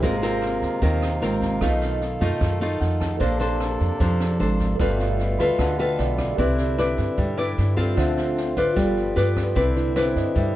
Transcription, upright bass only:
0.03 G#1
0.62 D#2
0.82 D#2
1.22 G#1
1.61 B1
2.21 F#2
2.41 F#2
2.81 F2
3.21 A#1
3.80 F2
4.00 F2
4.40 G#1
4.80 G1
5.39 D2
5.59 D2
5.99 B1
6.38 C2
6.98 G2
7.18 G2
7.58 G2
7.97 D2
8.57 A1
8.77 G1
9.17 G2
9.56 C2
10.16 G2
10.36 G2

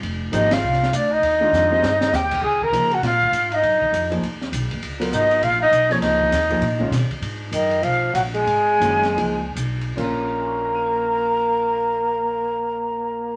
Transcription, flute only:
0.35 D#5
0.53 F5
0.96 D5
1.13 D#5
2.15 G5
2.45 G#5
2.65 A#5
2.95 F#5
3.06 F5
3.55 D#5
5.15 D#5
5.44 F5
5.62 D#5
5.92 C#5
6.03 D#5
7.54 D#5
7.84 F5
8.16 F#5
8.35 G#5
10.00 A#5

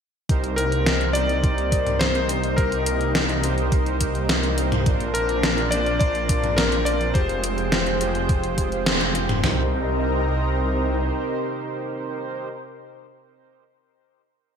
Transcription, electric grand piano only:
0.56 A#4
1.13 D5
1.99 C5
2.56 A#4
5.14 A#4
5.71 D5
5.99 D5
6.57 A#4
6.85 D5
7.14 C5

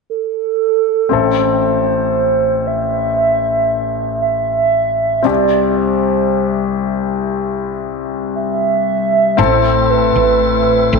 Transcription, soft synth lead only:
0.10 A4
1.13 C5
2.67 E5
4.22 E5
5.26 D5
5.70 D5
5.76 C5
8.36 E5
9.39 C5
9.90 B4
10.94 A4

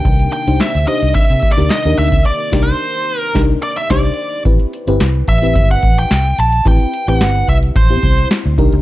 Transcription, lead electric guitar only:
Already playing: G5
0.33 G5
0.61 E5
0.88 D#5
1.15 E5
1.52 D5
1.71 D#5
1.98 E5
2.26 D5
2.63 C5
3.20 A#4
3.63 D5
3.77 E5
3.91 D5
5.29 E5
5.71 F#5
5.99 G5
6.40 A5
6.68 G5
7.09 F#5
7.49 E5
7.76 C5

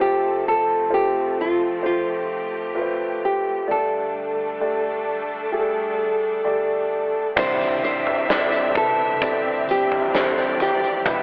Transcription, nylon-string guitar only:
0.01 G4
0.48 A4
0.94 G4
1.41 F4
1.86 F4
3.25 G4
3.71 A4
7.39 C5
7.85 C5
8.77 A4
9.71 G4
10.62 G4

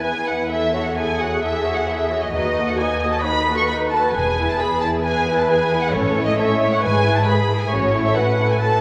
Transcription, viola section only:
Already playing: B4
0.52 A4
0.99 G#4
2.35 F#4
2.80 D#5
3.25 B4
4.59 G#4
5.04 B4
5.95 A4
6.40 C#5
6.84 B4
7.28 G#4
7.72 C#5
8.16 B4
8.60 A4

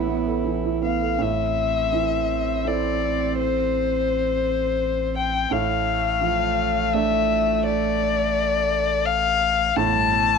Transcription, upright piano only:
Already playing: A2 E3 B3 E4 A4 B4
0.08 B3
0.26 A4
0.44 E3
0.64 E4
0.82 B3
1.01 A4
1.19 A2
1.92 E3
2.65 C4 E4 A4
5.51 A2
6.21 F3
6.94 A3 D4 A4
9.76 A2

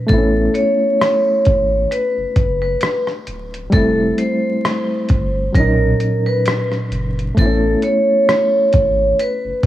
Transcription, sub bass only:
0.09 A1
1.47 G#1
2.17 F#1
2.36 F#1
3.28 D1
3.73 F1
5.10 G1
5.55 B1
6.91 F#1
7.37 A1
8.74 G#1
9.45 F#1

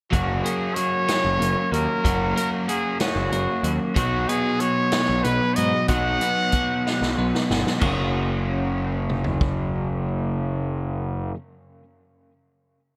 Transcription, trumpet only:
0.12 F#4
0.43 G#4
0.75 C#5
1.72 A#4
2.36 A#4
2.69 G#4
3.01 F#4
3.97 F#4
4.29 G#4
4.61 C#5
5.24 B4
5.56 D#5
5.89 F#5

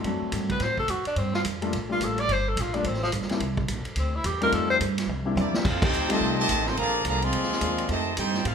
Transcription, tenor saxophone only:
0.51 B4
0.63 C5
0.79 A4
0.90 F#4
1.07 D4
1.17 C4
1.35 F4
1.92 F4
2.04 A4
2.20 D5
2.32 C5
2.48 A4
2.61 F4
2.74 D4
2.86 C4
3.03 F3
3.99 C4
4.15 E4
4.25 G4
4.43 A#4
4.53 A4
4.70 C5

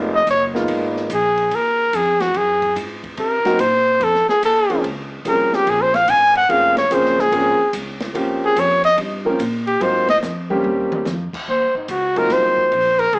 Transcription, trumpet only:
0.15 D#5
0.31 C#5
1.14 G#4
1.55 A#4
1.96 G#4
2.21 F#4
2.37 G#4
3.19 A#4
3.60 C5
4.04 A4
4.29 G#4
4.45 A4
5.29 A#4
5.55 G4
5.69 G#4
5.82 C5
5.96 F5
6.10 G#5
6.37 F#5
6.50 F5
6.78 C#5
6.94 C5
7.21 G#4
8.45 G#4
8.60 C#5
8.85 D#5
9.67 G4
9.82 C5
10.10 D#5
11.49 C5
11.77 D#4
11.91 F#4
12.18 A#4
12.33 C5
13.00 A#4
13.15 G#4

